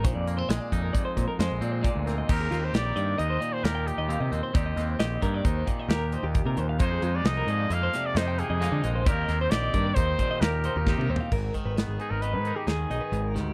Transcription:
<<
  \new Staff \with { instrumentName = "Clean electric guitar" } { \time 5/4 \key f \dorian \tempo 4 = 133 c''16 d''8 c''16 ees''16 d''8 bes'16 d''16 c''8 bes'16 c''8 d''16 c''16 d''8 bes'16 ees''16 | r16 aes'16 f'16 g'8 bes'16 d''8 ees''16 c''16 d''8 ees''16 g''8 ees''16 f''16 ees''8 c''16 | d''16 ees''8 c''16 ees''8 bes'16 d''16 c''8 d''16 ees''16 bes'8 c''16 g'8 bes'16 c''16 f''16 | r16 aes'16 f'16 g'8 bes'16 d''8 ees''16 c''16 d''8 ees''16 g''8 ees''16 f''16 ees''8 c''16 |
d''16 ees''8 c''16 ees''8 bes'16 d''16 c''8 d''16 ees''16 bes'8 c''16 g'8 bes'16 c''16 f''16 | bes'8 r16 ces''16 aes'8 ces''8 ees''16 ces''16 bes'16 aes'16 aes'8 ees''16 ces''8 bes'16 g'8 | }
  \new Staff \with { instrumentName = "Trumpet" } { \time 5/4 \key f \dorian r1 r4 | bes'8. c''16 d''4 ees''8. c''16 bes'8 g'4 r8 | r1 r4 | c''8. d''16 ees''4 f''8. d''16 c''8 aes'4 r8 |
bes'8. c''16 d''4 c''4 bes'4. r8 | r4. aes'16 bes'16 ces''8. g'16 aes'4. r8 | }
  \new Staff \with { instrumentName = "Clean electric guitar" } { \time 5/4 \key f \dorian << { r8 bes16 c'16 aes8 ees'4. aes8 c'4 c'8 | <c' ees' g'>8 c'8 g'4 ees'4 g'8 ees'8 <c' ees'>8 c'8 | <c' ees' g'>8 c'8 g'4 ees'4 g'8 ees'4. | <aes bes ees'>8 aes8 ees'4 bes4 ees'8 bes8 <aes bes ees'>8 aes8 |
<c' ees' g'>8 c'8 g'4 ees'4 g'8 ees'8 <c' ees' g'>8 c'8 | r4 ces'8 ees'4 ees'4 ees'4. | } \\ { <bes, ees>2 f,2 bes,4 | ees,4. ees4 bes,4. ees,4 | ees,4. ees4 bes,2 ees,8 | f,4. f4 c4. f,4 |
ees,4. ees4 bes,4. ees,4 | aes,8 ees4. ees4 ees4 aes,8 ees8 | } >> }
  \new Staff \with { instrumentName = "Picked electric bass" } { \clef bass \time 5/4 \key f \dorian bes,,16 f,8. bes,,16 r16 f,8 r8 bes,16 r16 f,16 bes,,16 bes,8. d,8. | ees,8 ees,8 bes,,8 g,8 ees,8 r8 ees,8. ees,8 c16 ees,16 r16 | ees,8 ees,8 bes,,8 g,8 ees,8 r8 ees,8. ees,8 c16 ees,8 | f,8 f,8 c,8 aes,8 f,8 r8 f,8. f,8 d16 bes,,8 |
ees,8 ees,8 bes,,8 g,8 ees,8 r8 ees,8. ees,8 c16 ees,16 r16 | aes,,8 r16 aes,,8 aes,,16 r16 aes,,8 aes,8 r16 ees,8 ces,16 r16 aes,,8 d,8 | }
  \new DrumStaff \with { instrumentName = "Drums" } \drummode { \time 5/4 <hh bd>8 hh8 <hh sn>8 <hh bd>8 <hh bd>8 <hh bd>8 <hh sn>8 hh8 <hh bd>8 <hh sn>8 | <cymc bd>8 <hh sn>8 <hh sn>8 hh8 hh8 hh8 <hh sn>8 hh8 hh8 hh8 | <hh bd>8 <hh sn>8 <hh sn>8 <hh bd>8 <hh bd>8 <hh bd>8 <hh sn>8 hh8 <hh bd>8 hh8 | <hh bd>8 hh8 <hh sn>8 hh8 hh8 <hh sn>8 <hh sn>8 hh8 <hh sn>8 hh8 |
<hh bd>8 <hh sn>8 <hh sn>8 <hh bd>8 <hh bd>8 <hh bd>8 <hh sn>8 hh8 \tuplet 3/2 { <bd sn>8 toml8 tomfh8 } | <cymc bd>8 <hh bd>8 <hh sn>8 hh8 hh8 hh8 <hh sn>8 hh8 hh8 <hh sn>8 | }
>>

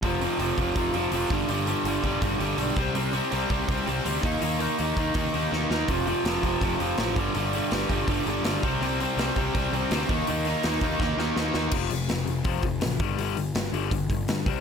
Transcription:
<<
  \new Staff \with { instrumentName = "Overdriven electric guitar" } { \clef bass \time 4/4 \key f \lydian \tempo 4 = 164 <f, c f>8 <f, c f>8 <f, c f>8 <f, c f>8 <f, c f>8 <f, c f>8 <f, c f>8 <g, d g>8 | <g, d g>8 <g, d g>8 <g, d g>8 <g, d g>8 <g, d g>8 <g, d g>8 <g, d g>8 <c g c'>8 | <c g c'>8 <c g c'>8 <c g c'>8 <c g c'>8 <c g c'>8 <c g c'>8 <c g c'>8 <ees bes ees'>8 | <ees bes ees'>8 <ees bes ees'>8 <ees bes ees'>8 <ees bes ees'>8 <ees bes ees'>8 <ees bes ees'>8 <ees bes ees'>8 <ees bes ees'>8 |
<f, c f>8 <f, c f>8 <f, c f>8 <f, c f>8 <f, c f>8 <f, c f>8 <f, c f>8 <g, d g>8 | <g, d g>8 <g, d g>8 <g, d g>8 <g, d g>8 <g, d g>8 <g, d g>8 <g, d g>8 <c g c'>8 | <c g c'>8 <c g c'>8 <c g c'>8 <c g c'>8 <c g c'>8 <c g c'>8 <c g c'>8 <ees bes ees'>8 | <ees bes ees'>8 <ees bes ees'>8 <ees bes ees'>8 <ees bes ees'>8 <ees bes ees'>8 <ees bes ees'>8 <ees bes ees'>8 <ees bes ees'>8 |
r1 | r1 | }
  \new Staff \with { instrumentName = "Overdriven electric guitar" } { \clef bass \time 4/4 \key f \lydian <f, c f>8 <f, c f>8 <f, c f>8 <f, c f>8 <f, c f>8 <f, c f>8 <f, c f>8 <g, d g>8 | <g, d g>8 <g, d g>8 <g, d g>8 <g, d g>8 <g, d g>8 <g, d g>8 <g, d g>8 <c g c'>8 | <c g c'>8 <c g c'>8 <c g c'>8 <c g c'>8 <c g c'>8 <c g c'>8 <c g c'>8 <ees bes ees'>8 | <ees bes ees'>8 <ees bes ees'>8 <ees bes ees'>8 <ees bes ees'>8 <ees bes ees'>8 <ees bes ees'>8 <ees bes ees'>8 <ees bes ees'>8 |
<f, c f>8 <f, c f>8 <f, c f>8 <f, c f>8 <f, c f>8 <f, c f>8 <f, c f>8 <g, d g>8 | <g, d g>8 <g, d g>8 <g, d g>8 <g, d g>8 <g, d g>8 <g, d g>8 <g, d g>8 <c g c'>8 | <c g c'>8 <c g c'>8 <c g c'>8 <c g c'>8 <c g c'>8 <c g c'>8 <c g c'>8 <ees bes ees'>8 | <ees bes ees'>8 <ees bes ees'>8 <ees bes ees'>8 <ees bes ees'>8 <ees bes ees'>8 <ees bes ees'>8 <ees bes ees'>8 <ees bes ees'>8 |
<f, c f>8 <f, c>8 <f, c>8 <f, c>8 <f, c f>8 <f, c>8 <f, c>8 <g, d g>8 | <g, d g>8 <g, d>8 <g, d>8 <g, d g>8 <g, d>8 <g, d>8 <g, d>8 <c g c'>8 | }
  \new Staff \with { instrumentName = "Picked electric bass" } { \clef bass \time 4/4 \key f \lydian f,,4 f,,8 f,,8 f,,8 f,,8 f,,8 g,,8 | g,,4 g,,8 g,,8 g,,8 g,,8 b,,8 c,8 | c,4 c,8 c,8 c,8 c,8 d,8 ees,8 | ees,4 ees,8 ees,8 ees,8 ees,8 ees,8 ees,8 |
f,,4 f,,8 f,,8 f,,8 f,,8 a,,8 g,,8 | g,,4 g,,8 g,,8 g,,8 g,,8 g,,8 c,8 | c,4 c,8 c,8 c,8 c,8 d,8 ees,8 | ees,4 ees,8 ees,8 ees,8 ees,8 ees,8 ees,8 |
f,,8 f,,8 f,,8 f,,8 f,,8 f,,8 a,,8 g,,8 | g,,8 g,,8 g,,8 g,,8 g,,8 g,,8 g,8 c,8 | }
  \new DrumStaff \with { instrumentName = "Drums" } \drummode { \time 4/4 <hho bd>8 hho8 hho8 <hho bd>8 <hho bd>8 hho8 hho8 <hho bd>8 | hho8 hho8 hho8 <hho bd>8 <hho bd>8 hho8 hho8 <hho bd>8 | hho8 hho8 hho8 <hho bd>8 <hho bd>8 hho8 hho8 <hho bd>8 | hho8 hho8 hho8 <hho bd>8 <hho bd>8 hho8 sn8 sn8 |
<hho bd>8 hho8 <hho sn>8 <hho bd>8 <hho bd>8 hho8 <hho sn>8 <hho bd>8 | hho8 hho8 <hho sn>8 <hho bd>8 <hho bd>8 hho8 <hho sn>8 <hho bd>8 | hho8 hho8 <hho sn>8 <hho bd>8 <hho bd>8 hho8 <hho sn>8 <hho bd>8 | hho8 hho8 <hho sn>8 <hho bd>8 <bd sn>8 sn8 sn8 sn8 |
<cymc bd>8 hho8 <hho sn>8 hho8 <hho bd>8 <hho bd>8 <hho sn>8 <hho bd>8 | hho8 hho8 <hho sn>8 hho8 <hho bd>8 <hho bd>8 <hho sn>8 <hho bd>8 | }
>>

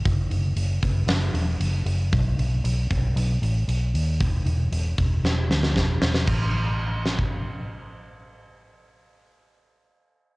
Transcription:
<<
  \new Staff \with { instrumentName = "Fingered electric bass" } { \clef bass \time 4/4 \key e \mixolydian \tempo 4 = 116 fis,,8 fis,,8 fis,,8 fis,,8 fis,,8 e,,8 fis,,8 fis,,8 | b,,8 b,,8 b,,8 b,,8 b,,8 a,,8 b,,8 dis,8 | e,,8 e,,8 e,,8 e,,8 e,,8 d,8 e,,8 e,,8 | a,,1~ |
a,,1 | }
  \new DrumStaff \with { instrumentName = "Drums" } \drummode { \time 4/4 <hho bd>8 hho8 hho8 <hho bd>8 <hho sn>8 hho8 hho8 hho8 | <hho bd>8 hho8 hho8 <hho bd>8 hho8 hho8 hho8 hho8 | <hho bd>8 hho8 hho8 <hho bd>8 sn8 sn16 sn16 <bd sn>8 sn16 sn16 | <cymc bd>4 r8 sn16 bd16 r4 r4 |
r4 r4 r4 r4 | }
>>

